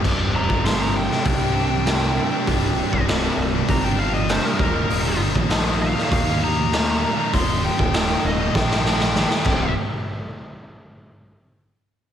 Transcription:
<<
  \new Staff \with { instrumentName = "Lead electric guitar" } { \time 4/4 \key c \minor \tempo 4 = 99 r8 bes''8 c'''16 bes''16 g''8 g''2~ | g''4 r4 bes''16 g''16 f''16 ees''16 c''16 bes'16 bes'8~ | bes'8 r4 f''4 bes''4. | c'''8 g''4 ees''8 g''8 g''4. |
r1 | }
  \new Staff \with { instrumentName = "Distorted electric guitar" } { \clef bass \time 4/4 \key c \minor <c, g, c g d'>8 <g, c g d'>8 <c, g, c g d'>16 <c g d'>8 <c g d'>8 <c g d'>16 <g, c g d'>16 <c g d'>16 <c, g, c g d'>16 <c g d'>8 <c g d'>16 | <c, g, c g d'>8 <g, c g d'>8 <c, g, c g d'>16 <c g d'>8 <c g d'>8 <c g d'>16 <g, c g d'>16 <c g d'>16 <c, g, c g d'>16 <c g d'>16 <ees, bes, ees g bes ees'>16 <ees g bes ees'>16 | <ees, bes, ees g bes ees'>8 <ees g bes ees'>8 <ees, bes, ees g bes ees'>16 <ees g bes ees'>8 <ees g bes ees'>8 <ees g bes ees'>16 <ees g bes ees'>16 <ees g bes ees'>16 <ees, bes, ees g bes ees'>16 <ees g bes ees'>8 <ees g bes ees'>16 | <ees, bes, ees g bes ees'>8 <ees g bes ees'>8 <ees, bes, ees g bes ees'>16 <ees g bes ees'>8 <ees g bes ees'>8 <ees g bes ees'>16 <ees g bes ees'>16 <ees g bes ees'>16 <ees, bes, ees g bes ees'>16 <ees g bes ees'>16 <c, g, c>8 |
r1 | }
  \new Staff \with { instrumentName = "Distorted electric guitar" } { \clef bass \time 4/4 \key c \minor <c, g, c g d'>8. <c g d'>16 <c, g, c g d'>4~ <c, g, c g d'>16 <c g d'>16 <g, c g d'>8 <c, g, c g d'>8 <g, c g d'>16 <c g d'>16 | <c, g, c g d'>8. <c g d'>16 <c, g, c g d'>4~ <c, g, c g d'>16 <c g d'>16 <g, c g d'>8 <c, g, c g d'>8 <ees, bes, ees g bes ees'>16 <ees g bes ees'>16 | <ees, bes, ees g bes ees'>8. <ees g bes ees'>16 <ees, bes, ees g bes ees'>4~ <ees, bes, ees g bes ees'>16 <ees g bes ees'>16 <ees g bes ees'>8 <ees, bes, ees g bes ees'>8 <ees g bes ees'>16 <ees g bes ees'>16 | <ees, bes, ees g bes ees'>8. <ees g bes ees'>16 <ees, bes, ees g bes ees'>4~ <ees, bes, ees g bes ees'>16 <ees g bes ees'>16 <ees g bes ees'>8 <ees, bes, ees g bes ees'>8 <c, g, c>8 |
r1 | }
  \new Staff \with { instrumentName = "Clean electric guitar" } { \clef bass \time 4/4 \key c \minor c,8 c8 g8 g,8 c8 d'8 g8 d'8 | c,8 c8 g8 g,8 c8 d'8 g8 ees,8 | r1 | r1 |
r1 | }
  \new Staff \with { instrumentName = "Picked electric bass" } { \clef bass \time 4/4 \key c \minor c,,8 ees,,16 g,,4~ g,,16 c,2 | c,,8. c,,8. c,,8 g,,4. ees,,8 | ees,,8 g,,16 bes,,4~ bes,,16 ees,2 | ees,,8. ees,,8. ees,,8 bes,,4. c,,8 |
r1 | }
  \new DrumStaff \with { instrumentName = "Drums" } \drummode { \time 4/4 <cymc bd>8. bd16 <hho sn>8. sn16 <hho bd>4 <hho sn>4 | <hho bd>8. bd16 <hho sn>4 <hho bd>4 <hho sn>8 bd8 | hho8. bd16 <hho sn>8. sn16 <hho bd>4 <hho sn>4 | <hho bd>8. bd16 <hho sn>4 <bd sn>16 sn16 sn16 sn16 sn16 sn16 <cymc bd>8 |
r4 r4 r4 r4 | }
>>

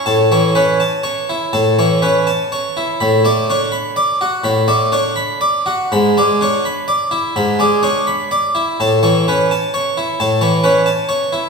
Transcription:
\new Staff \with { instrumentName = "Harpsichord" } { \time 4/4 \key a \major \tempo 4 = 84 << { a''8 r2. r8 | b''8 r2. r8 | b''8 r2. r8 | a''8 r2. r8 | } \\ { \tuplet 3/2 { a,8 <e cis''>8 <cis' b'>8 a''8 cis''8 e'8 <a, a''>8 <e cis''>8 <cis' b'>8 a''8 cis''8 e'8 } | \tuplet 3/2 { a,8 <a d''>8 <d' cis''>8 b''8 d''8 fis'8 <a, b''>8 <a d''>8 <d' cis''>8 b''8 d''8 fis'8 } | \tuplet 3/2 { gis,8 <gis d''>8 <d' cis''>8 b''8 d''8 e'8 <gis, b''>8 <gis d''>8 <d' cis''>8 b''8 d''8 e'8 } | \tuplet 3/2 { a,8 <e cis''>8 <cis' b'>8 a''8 cis''8 e'8 <a, a''>8 <e cis''>8 <cis' b'>8 a''8 cis''8 e'8 } | } >> }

